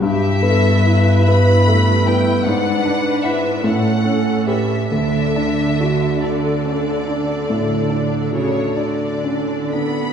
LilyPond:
<<
  \new Staff \with { instrumentName = "Violin section" } { \time 12/8 \key d \major \tempo 4. = 48 e''4. b''4 g''8 fis''4 e''8 fis''4 e''8 | e''4. d''2~ d''8 cis''8 d''4 b''8 | }
  \new Staff \with { instrumentName = "Viola section" } { \time 12/8 \key d \major << { g'8 a'8 b'2 b'4. a'4. | a'1~ a'4.~ a'16 r16 | } \\ { e'4. e'4. d'4. cis'4. | d'1~ d'4.~ d'16 r16 | } >> }
  \new Staff \with { instrumentName = "Grand piano" } { \time 12/8 \key d \major g,8 b8 e'8 b8 a8 b8 gis,8 d'8 <e' b'>8 a,8 cis'8 <g' b'>8 | d,8 d'8 fis'8 d'8 cis'8 d'8 a,8 d'8 fis'8 d'8 cis'8 d'8 | }
  \new Staff \with { instrumentName = "Cello section" } { \clef bass \time 12/8 \key d \major g,2. gis,4. a,4. | d1 cis8 d4 b8 | }
>>